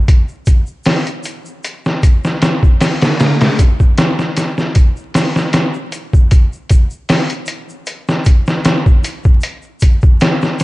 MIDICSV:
0, 0, Header, 1, 2, 480
1, 0, Start_track
1, 0, Tempo, 779221
1, 52, Time_signature, 4, 2, 24, 8
1, 6554, End_track
2, 0, Start_track
2, 0, Title_t, "Drums"
2, 50, Note_on_c, 9, 82, 44
2, 51, Note_on_c, 9, 36, 107
2, 51, Note_on_c, 9, 42, 87
2, 112, Note_off_c, 9, 36, 0
2, 112, Note_off_c, 9, 42, 0
2, 112, Note_off_c, 9, 82, 0
2, 173, Note_on_c, 9, 82, 21
2, 235, Note_off_c, 9, 82, 0
2, 284, Note_on_c, 9, 82, 79
2, 290, Note_on_c, 9, 36, 85
2, 290, Note_on_c, 9, 42, 60
2, 346, Note_off_c, 9, 82, 0
2, 351, Note_off_c, 9, 42, 0
2, 352, Note_off_c, 9, 36, 0
2, 410, Note_on_c, 9, 82, 36
2, 472, Note_off_c, 9, 82, 0
2, 518, Note_on_c, 9, 82, 53
2, 527, Note_on_c, 9, 46, 81
2, 532, Note_on_c, 9, 38, 112
2, 580, Note_off_c, 9, 82, 0
2, 589, Note_off_c, 9, 46, 0
2, 594, Note_off_c, 9, 38, 0
2, 651, Note_on_c, 9, 82, 21
2, 658, Note_on_c, 9, 42, 42
2, 712, Note_off_c, 9, 82, 0
2, 720, Note_off_c, 9, 42, 0
2, 762, Note_on_c, 9, 82, 89
2, 773, Note_on_c, 9, 42, 65
2, 823, Note_off_c, 9, 82, 0
2, 834, Note_off_c, 9, 42, 0
2, 897, Note_on_c, 9, 82, 39
2, 958, Note_off_c, 9, 82, 0
2, 1009, Note_on_c, 9, 82, 50
2, 1013, Note_on_c, 9, 42, 87
2, 1071, Note_off_c, 9, 82, 0
2, 1075, Note_off_c, 9, 42, 0
2, 1140, Note_on_c, 9, 82, 22
2, 1146, Note_on_c, 9, 38, 51
2, 1202, Note_off_c, 9, 82, 0
2, 1208, Note_off_c, 9, 38, 0
2, 1251, Note_on_c, 9, 36, 96
2, 1252, Note_on_c, 9, 42, 67
2, 1252, Note_on_c, 9, 82, 72
2, 1313, Note_off_c, 9, 36, 0
2, 1313, Note_off_c, 9, 42, 0
2, 1313, Note_off_c, 9, 82, 0
2, 1381, Note_on_c, 9, 82, 39
2, 1384, Note_on_c, 9, 38, 48
2, 1443, Note_off_c, 9, 82, 0
2, 1446, Note_off_c, 9, 38, 0
2, 1489, Note_on_c, 9, 42, 83
2, 1494, Note_on_c, 9, 38, 105
2, 1495, Note_on_c, 9, 82, 41
2, 1550, Note_off_c, 9, 42, 0
2, 1555, Note_off_c, 9, 38, 0
2, 1557, Note_off_c, 9, 82, 0
2, 1619, Note_on_c, 9, 36, 92
2, 1624, Note_on_c, 9, 82, 23
2, 1680, Note_off_c, 9, 36, 0
2, 1685, Note_off_c, 9, 82, 0
2, 1728, Note_on_c, 9, 46, 73
2, 1733, Note_on_c, 9, 38, 98
2, 1733, Note_on_c, 9, 82, 80
2, 1790, Note_off_c, 9, 46, 0
2, 1795, Note_off_c, 9, 38, 0
2, 1795, Note_off_c, 9, 82, 0
2, 1858, Note_on_c, 9, 46, 74
2, 1862, Note_on_c, 9, 82, 32
2, 1863, Note_on_c, 9, 38, 108
2, 1919, Note_off_c, 9, 46, 0
2, 1924, Note_off_c, 9, 38, 0
2, 1924, Note_off_c, 9, 82, 0
2, 1969, Note_on_c, 9, 82, 51
2, 1970, Note_on_c, 9, 46, 68
2, 1975, Note_on_c, 9, 38, 101
2, 2031, Note_off_c, 9, 46, 0
2, 2031, Note_off_c, 9, 82, 0
2, 2036, Note_off_c, 9, 38, 0
2, 2099, Note_on_c, 9, 46, 73
2, 2102, Note_on_c, 9, 82, 25
2, 2104, Note_on_c, 9, 38, 98
2, 2160, Note_off_c, 9, 46, 0
2, 2164, Note_off_c, 9, 82, 0
2, 2165, Note_off_c, 9, 38, 0
2, 2211, Note_on_c, 9, 42, 66
2, 2211, Note_on_c, 9, 82, 77
2, 2212, Note_on_c, 9, 36, 88
2, 2273, Note_off_c, 9, 42, 0
2, 2273, Note_off_c, 9, 82, 0
2, 2274, Note_off_c, 9, 36, 0
2, 2339, Note_on_c, 9, 82, 33
2, 2341, Note_on_c, 9, 36, 89
2, 2401, Note_off_c, 9, 82, 0
2, 2402, Note_off_c, 9, 36, 0
2, 2449, Note_on_c, 9, 42, 85
2, 2453, Note_on_c, 9, 82, 46
2, 2454, Note_on_c, 9, 38, 114
2, 2510, Note_off_c, 9, 42, 0
2, 2514, Note_off_c, 9, 82, 0
2, 2515, Note_off_c, 9, 38, 0
2, 2581, Note_on_c, 9, 38, 43
2, 2582, Note_on_c, 9, 82, 23
2, 2642, Note_off_c, 9, 38, 0
2, 2643, Note_off_c, 9, 82, 0
2, 2689, Note_on_c, 9, 42, 63
2, 2693, Note_on_c, 9, 82, 86
2, 2694, Note_on_c, 9, 38, 47
2, 2751, Note_off_c, 9, 42, 0
2, 2755, Note_off_c, 9, 82, 0
2, 2756, Note_off_c, 9, 38, 0
2, 2821, Note_on_c, 9, 38, 41
2, 2822, Note_on_c, 9, 82, 33
2, 2882, Note_off_c, 9, 38, 0
2, 2883, Note_off_c, 9, 82, 0
2, 2926, Note_on_c, 9, 42, 85
2, 2929, Note_on_c, 9, 82, 42
2, 2931, Note_on_c, 9, 36, 100
2, 2988, Note_off_c, 9, 42, 0
2, 2990, Note_off_c, 9, 82, 0
2, 2993, Note_off_c, 9, 36, 0
2, 3060, Note_on_c, 9, 82, 23
2, 3122, Note_off_c, 9, 82, 0
2, 3168, Note_on_c, 9, 46, 68
2, 3173, Note_on_c, 9, 38, 104
2, 3177, Note_on_c, 9, 82, 85
2, 3230, Note_off_c, 9, 46, 0
2, 3234, Note_off_c, 9, 38, 0
2, 3239, Note_off_c, 9, 82, 0
2, 3302, Note_on_c, 9, 38, 57
2, 3304, Note_on_c, 9, 82, 38
2, 3363, Note_off_c, 9, 38, 0
2, 3366, Note_off_c, 9, 82, 0
2, 3406, Note_on_c, 9, 42, 80
2, 3407, Note_on_c, 9, 82, 45
2, 3411, Note_on_c, 9, 38, 103
2, 3468, Note_off_c, 9, 42, 0
2, 3469, Note_off_c, 9, 82, 0
2, 3473, Note_off_c, 9, 38, 0
2, 3535, Note_on_c, 9, 82, 24
2, 3597, Note_off_c, 9, 82, 0
2, 3648, Note_on_c, 9, 42, 67
2, 3649, Note_on_c, 9, 82, 87
2, 3709, Note_off_c, 9, 42, 0
2, 3711, Note_off_c, 9, 82, 0
2, 3779, Note_on_c, 9, 36, 90
2, 3780, Note_on_c, 9, 82, 36
2, 3840, Note_off_c, 9, 36, 0
2, 3842, Note_off_c, 9, 82, 0
2, 3888, Note_on_c, 9, 42, 85
2, 3889, Note_on_c, 9, 82, 51
2, 3891, Note_on_c, 9, 36, 105
2, 3949, Note_off_c, 9, 42, 0
2, 3951, Note_off_c, 9, 82, 0
2, 3953, Note_off_c, 9, 36, 0
2, 4022, Note_on_c, 9, 82, 27
2, 4084, Note_off_c, 9, 82, 0
2, 4124, Note_on_c, 9, 42, 66
2, 4131, Note_on_c, 9, 36, 92
2, 4133, Note_on_c, 9, 82, 92
2, 4186, Note_off_c, 9, 42, 0
2, 4192, Note_off_c, 9, 36, 0
2, 4195, Note_off_c, 9, 82, 0
2, 4254, Note_on_c, 9, 82, 39
2, 4315, Note_off_c, 9, 82, 0
2, 4367, Note_on_c, 9, 46, 82
2, 4370, Note_on_c, 9, 82, 52
2, 4372, Note_on_c, 9, 38, 112
2, 4428, Note_off_c, 9, 46, 0
2, 4431, Note_off_c, 9, 82, 0
2, 4433, Note_off_c, 9, 38, 0
2, 4495, Note_on_c, 9, 42, 44
2, 4495, Note_on_c, 9, 82, 24
2, 4556, Note_off_c, 9, 82, 0
2, 4557, Note_off_c, 9, 42, 0
2, 4597, Note_on_c, 9, 82, 86
2, 4607, Note_on_c, 9, 42, 70
2, 4659, Note_off_c, 9, 82, 0
2, 4668, Note_off_c, 9, 42, 0
2, 4739, Note_on_c, 9, 82, 42
2, 4800, Note_off_c, 9, 82, 0
2, 4843, Note_on_c, 9, 82, 51
2, 4847, Note_on_c, 9, 42, 89
2, 4905, Note_off_c, 9, 82, 0
2, 4909, Note_off_c, 9, 42, 0
2, 4979, Note_on_c, 9, 82, 28
2, 4982, Note_on_c, 9, 38, 54
2, 5040, Note_off_c, 9, 82, 0
2, 5043, Note_off_c, 9, 38, 0
2, 5083, Note_on_c, 9, 82, 81
2, 5090, Note_on_c, 9, 42, 64
2, 5091, Note_on_c, 9, 36, 92
2, 5145, Note_off_c, 9, 82, 0
2, 5151, Note_off_c, 9, 42, 0
2, 5153, Note_off_c, 9, 36, 0
2, 5215, Note_on_c, 9, 82, 41
2, 5222, Note_on_c, 9, 38, 52
2, 5277, Note_off_c, 9, 82, 0
2, 5284, Note_off_c, 9, 38, 0
2, 5326, Note_on_c, 9, 82, 51
2, 5327, Note_on_c, 9, 42, 87
2, 5332, Note_on_c, 9, 38, 114
2, 5387, Note_off_c, 9, 82, 0
2, 5388, Note_off_c, 9, 42, 0
2, 5393, Note_off_c, 9, 38, 0
2, 5459, Note_on_c, 9, 36, 98
2, 5460, Note_on_c, 9, 82, 22
2, 5520, Note_off_c, 9, 36, 0
2, 5521, Note_off_c, 9, 82, 0
2, 5569, Note_on_c, 9, 82, 94
2, 5571, Note_on_c, 9, 42, 67
2, 5631, Note_off_c, 9, 82, 0
2, 5633, Note_off_c, 9, 42, 0
2, 5691, Note_on_c, 9, 82, 36
2, 5699, Note_on_c, 9, 36, 96
2, 5752, Note_off_c, 9, 82, 0
2, 5760, Note_off_c, 9, 36, 0
2, 5796, Note_on_c, 9, 82, 52
2, 5811, Note_on_c, 9, 42, 84
2, 5858, Note_off_c, 9, 82, 0
2, 5872, Note_off_c, 9, 42, 0
2, 5927, Note_on_c, 9, 82, 24
2, 5989, Note_off_c, 9, 82, 0
2, 6039, Note_on_c, 9, 82, 95
2, 6050, Note_on_c, 9, 42, 64
2, 6051, Note_on_c, 9, 36, 88
2, 6101, Note_off_c, 9, 82, 0
2, 6112, Note_off_c, 9, 42, 0
2, 6113, Note_off_c, 9, 36, 0
2, 6170, Note_on_c, 9, 82, 38
2, 6179, Note_on_c, 9, 36, 95
2, 6231, Note_off_c, 9, 82, 0
2, 6241, Note_off_c, 9, 36, 0
2, 6285, Note_on_c, 9, 82, 55
2, 6290, Note_on_c, 9, 42, 93
2, 6295, Note_on_c, 9, 38, 120
2, 6347, Note_off_c, 9, 82, 0
2, 6352, Note_off_c, 9, 42, 0
2, 6357, Note_off_c, 9, 38, 0
2, 6415, Note_on_c, 9, 82, 26
2, 6424, Note_on_c, 9, 38, 46
2, 6477, Note_off_c, 9, 82, 0
2, 6486, Note_off_c, 9, 38, 0
2, 6525, Note_on_c, 9, 82, 90
2, 6529, Note_on_c, 9, 42, 68
2, 6534, Note_on_c, 9, 38, 46
2, 6554, Note_off_c, 9, 38, 0
2, 6554, Note_off_c, 9, 42, 0
2, 6554, Note_off_c, 9, 82, 0
2, 6554, End_track
0, 0, End_of_file